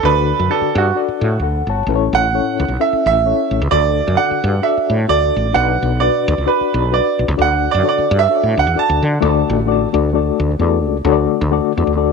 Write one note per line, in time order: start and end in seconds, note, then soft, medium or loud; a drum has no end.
0.03 0.32 D2 medium
0.03 0.73 D3 medium
0.03 0.40 D4 medium
0.03 0.41 F#4 medium
0.03 0.41 A4 medium
0.03 0.52 B4 loud
0.03 0.41 D5 medium
0.39 0.48 F#2 medium
0.50 0.86 D4 medium
0.50 0.87 F#4 medium
0.50 0.78 A4 medium
0.50 0.87 A4 medium
0.50 0.87 D5 medium
0.61 muted fretless electric bass stroke soft
0.75 0.91 G2 loud
0.75 0.96 F#4 medium
0.95 1.32 D4 medium
0.95 1.32 F#4 medium
0.95 1.32 A4 medium
0.95 1.33 D5 medium
1.08 muted fretless electric bass stroke soft
1.21 1.37 A2 medium
1.40 1.61 D2 medium
1.40 1.68 A4 soft
1.40 1.68 F#5 medium
1.67 1.83 G1 medium
1.67 1.94 C#5 medium
1.67 2.13 A5 medium
1.87 2.08 A1 medium
1.87 2.57 A2 medium
1.87 2.24 C#4 medium
1.87 2.25 E4 medium
1.87 2.25 A4 medium
1.87 1.95 B4 medium
1.95 2.28 C#5 medium
2.13 2.39 A1 medium
2.13 2.76 F#5 loud
2.33 2.70 C#4 medium
2.33 2.70 E4 medium
2.33 2.71 A4 medium
2.33 2.71 C#5 medium
2.60 2.68 C#2 medium
2.68 2.77 B1 medium
2.79 3.16 C#4 medium
2.79 3.16 E4 medium
2.79 3.16 A4 medium
2.79 3.17 E5 medium
2.79 3.05 E5 medium
2.93 muted fretless electric bass stroke soft
3.06 3.32 A1 medium
3.06 3.68 E5 loud
3.25 3.62 C#4 medium
3.25 3.62 E4 medium
3.25 3.62 A4 medium
3.25 3.62 C#5 medium
3.51 3.59 A1 medium
3.62 3.69 C#2 loud
3.71 4.00 D2 medium
3.71 4.40 D3 medium
3.71 4.07 D4 medium
3.71 4.08 F#4 medium
3.71 4.08 A4 medium
3.71 4.19 D5 medium
3.71 4.08 D5 medium
4.08 4.15 F#2 loud
4.17 4.54 D4 medium
4.17 4.54 F#4 medium
4.17 4.54 A4 medium
4.17 4.54 D5 medium
4.17 4.65 F#5 loud
4.31 muted fretless electric bass stroke medium
4.44 4.59 G2 loud
4.62 4.99 D4 medium
4.62 4.99 F#4 medium
4.62 5.00 A4 medium
4.62 5.00 D5 medium
4.62 5.06 E5 medium
4.77 muted fretless electric bass stroke soft
4.90 5.05 A2 medium
5.08 5.30 D2 medium
5.08 5.45 D4 medium
5.08 5.45 F#4 medium
5.08 5.46 A4 medium
5.08 5.57 D5 medium
5.08 5.46 D5 medium
5.36 5.51 A1 medium
5.53 5.76 B1 loud
5.53 6.24 B2 medium
5.53 5.90 D4 medium
5.53 5.91 F#4 medium
5.53 5.91 B4 medium
5.53 5.92 D5 medium
5.53 6.02 F#5 loud
5.82 6.08 B1 medium
6.00 6.37 D4 medium
6.00 6.38 F#4 medium
6.00 6.38 B4 medium
6.00 6.48 D5 medium
6.00 6.38 D5 medium
6.28 6.36 D2 loud
6.38 6.45 C#2 medium
6.46 6.83 D4 medium
6.46 6.83 F#4 medium
6.46 6.83 B4 medium
6.46 6.95 B4 medium
6.46 6.84 D5 medium
6.61 muted fretless electric bass stroke soft
6.74 6.99 B1 medium
6.91 7.28 D4 medium
6.91 7.28 F#4 medium
6.91 7.29 B4 medium
6.91 7.29 D5 medium
6.91 7.18 D5 medium
7.19 7.27 B1 medium
7.28 7.36 C#2 loud
7.37 7.67 D2 loud
7.37 8.07 D3 medium
7.37 7.74 D4 medium
7.37 7.74 F#4 medium
7.37 7.74 A4 medium
7.37 7.75 D5 medium
7.42 7.72 F#5 loud
7.71 7.82 F#2 medium
7.71 7.86 D5 medium
7.83 8.20 D4 medium
7.83 8.20 F#4 medium
7.83 8.20 A4 medium
7.83 7.91 C#5 medium
7.89 8.18 D5 medium
7.89 8.23 D5 medium
7.98 muted fretless electric bass stroke medium
8.11 8.26 G2 loud
8.19 8.60 E5 loud
8.29 8.66 D4 medium
8.29 8.66 F#4 medium
8.29 8.66 A4 medium
8.29 8.37 C#5 medium
8.37 8.70 D5 medium
8.43 8.54 A2 medium
8.57 8.65 D2 medium
8.57 8.76 F#5 loud
8.67 8.74 E2 medium
8.75 9.12 D4 medium
8.75 9.12 F#4 medium
8.75 9.12 A4 medium
8.75 9.13 D5 medium
8.75 9.03 A5 loud
8.75 muted fretless electric bass stroke soft
8.90 9.00 D2 medium
9.02 9.18 D3 medium
9.21 9.43 D2 loud
9.21 9.90 D3 medium
9.21 9.57 A3 loud
9.21 9.58 D4 loud
9.21 9.28 F4 medium
9.21 9.58 A4 loud
9.21 9.58 D5 loud
9.27 9.61 F#4 loud
9.50 9.85 A1 loud
9.66 9.87 A3 loud
9.66 9.87 D4 medium
9.66 9.87 F#4 medium
9.66 9.88 A4 medium
9.66 9.88 D5 loud
9.93 10.30 D2 medium
9.93 10.08 A3 medium
9.93 10.08 D4 medium
9.93 10.08 F#4 medium
9.93 10.09 A4 medium
9.93 10.09 D5 medium
10.13 10.50 A3 medium
10.13 10.50 D4 medium
10.13 10.50 F#4 medium
10.13 10.50 A4 medium
10.13 10.50 D5 medium
10.40 10.55 D2 medium
10.59 10.85 E2 medium
10.59 10.95 A3 medium
10.59 10.96 D4 medium
10.59 10.96 F#4 medium
10.59 10.96 A4 medium
10.59 10.96 D5 loud
10.85 11.00 C#2 medium
11.05 11.26 D2 loud
11.05 11.74 D3 medium
11.05 11.41 A3 loud
11.05 11.42 D4 loud
11.05 11.41 F#4 loud
11.05 11.42 A4 loud
11.05 11.13 C#5 loud
11.12 11.45 D5 loud
11.41 11.59 D2 loud
11.52 11.71 A3 loud
11.52 11.71 D4 medium
11.52 11.71 F#4 loud
11.52 11.72 A4 loud
11.52 11.72 D5 loud
11.77 11.85 E2 loud
11.77 11.92 A3 medium
11.77 11.92 D4 medium
11.77 11.92 F#4 medium
11.77 11.92 A4 medium
11.77 11.92 D5 medium
11.87 12.12 D2 medium
11.96 12.12 A3 medium
11.96 12.12 D4 medium
11.96 12.12 F#4 medium
11.96 12.12 A4 medium
11.96 12.12 D5 loud